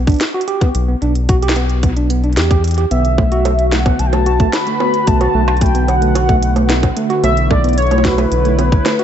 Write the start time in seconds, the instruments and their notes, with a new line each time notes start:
Already playing: analog synth bass B1
0.07 tine electric piano D4, kick, closed hi-hat
0.10 closed hi-hat
0.12 closed hi-hat
0.14 closed hi-hat
0.16 closed hi-hat
0.19 snare, closed hi-hat
0.21 closed hi-hat
0.34 tine electric piano F#4
0.41 closed hi-hat
0.48 tine electric piano G4, closed hi-hat
0.61 tine electric piano B3, kick, closed hi-hat
0.75 analog synth bass B1, closed hi-hat
0.88 tine electric piano B3
1.02 analog synth bass B1, tine electric piano D4, closed hi-hat
1.15 closed hi-hat
1.29 tine electric piano F#4, kick, closed hi-hat
1.42 tine electric piano G4, closed hi-hat
1.49 snare
1.56 tine electric piano B3, closed hi-hat
1.70 closed hi-hat
1.83 tine electric piano B3, kick, closed hi-hat
1.97 tine electric piano D4, closed hi-hat
2.10 tine electric piano B3, closed hi-hat
2.24 tine electric piano D4, closed hi-hat
2.33 closed hi-hat
2.37 analog synth bass E2, tine electric piano G4, snare, closed hi-hat
2.42 closed hi-hat
2.51 tine electric piano G4, kick, closed hi-hat
2.64 closed hi-hat
2.68 closed hi-hat
2.71 closed hi-hat
2.74 closed hi-hat
2.78 tine electric piano G4, closed hi-hat
2.91 analog synth bass B1, analog synth pad D3, tine electric piano B3, soft synth lead E5, closed hi-hat
3.05 analog synth pad A3 F#4, closed hi-hat
3.18 tine electric piano A3, kick, high bongo
3.32 tine electric piano F#4, closed hi-hat
3.45 tine electric piano A3, closed hi-hat, high bongo
3.59 closed hi-hat
3.72 tine electric piano A3, soft synth lead F#5, snare, closed hi-hat
3.86 tine electric piano B3, kick, closed hi-hat, high bongo
3.93 analog synth pad B4
3.99 analog synth bass B1, soft synth lead A5, closed hi-hat
4.06 soft synth lead G5
4.13 tine electric piano A3, soft synth lead A5, closed hi-hat, high bongo
4.26 tine electric piano F#4, closed hi-hat
4.40 tine electric piano A3, kick, closed hi-hat
4.53 soft synth lead B5, snare, closed hi-hat, high bongo
4.67 tine electric piano A3, closed hi-hat
4.80 tine electric piano B3, high bongo
4.94 closed hi-hat
5.07 analog synth bass B1, tine electric piano A3, soft synth lead A5, kick, closed hi-hat
5.21 tine electric piano F#4, closed hi-hat, high bongo
5.34 analog synth bass B1, tine electric piano A3
5.48 closed hi-hat, high bongo
5.57 closed hi-hat
5.61 tine electric piano A3, soft synth lead G5, kick, closed hi-hat
5.66 closed hi-hat
5.75 tine electric piano B3, closed hi-hat
5.88 soft synth lead F#5, closed hi-hat, high bongo
6.02 tine electric piano A3, closed hi-hat
6.15 tine electric piano F#4, closed hi-hat, high bongo
6.29 tine electric piano A3, kick, closed hi-hat
6.43 closed hi-hat
6.56 tine electric piano A3, closed hi-hat, high bongo
6.69 tine electric piano B3, snare, closed hi-hat
6.83 kick, closed hi-hat, high bongo
6.97 tine electric piano A3, closed hi-hat
7.10 tine electric piano F#4, closed hi-hat
7.24 analog synth bass B1, tine electric piano A3, soft synth lead E5, closed hi-hat, high bongo
7.32 analog synth pad E4
7.37 closed hi-hat
7.51 tine electric piano A3, soft synth lead D5, kick, high bongo
7.64 tine electric piano B3, closed hi-hat
7.69 closed hi-hat
7.73 closed hi-hat
7.78 soft synth lead C#5, analog synth pad C#5, closed hi-hat
7.87 closed hi-hat
7.91 tine electric piano A3, closed hi-hat, high bongo
7.98 high bongo
8.05 tine electric piano F#4, soft synth lead B4, kick, snare, closed hi-hat, high bongo
8.11 high bongo
8.18 tine electric piano A3, closed hi-hat, high bongo
8.32 analog synth bass B1, closed hi-hat
8.45 tine electric piano A3, closed hi-hat
8.59 tine electric piano B3, closed hi-hat, high bongo
8.72 kick, closed hi-hat
8.86 tine electric piano A3, snare, closed hi-hat, high bongo
8.99 tine electric piano F#4, closed hi-hat